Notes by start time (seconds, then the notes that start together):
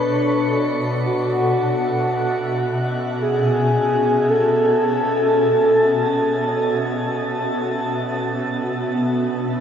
Already playing: B2 B3 D4 F#4 A4 B4 E5
1.06 F#4
1.15 C#4
1.28 B3
3.22 G#4
4.30 A4
7.95 A4
8.15 D4
8.76 C#5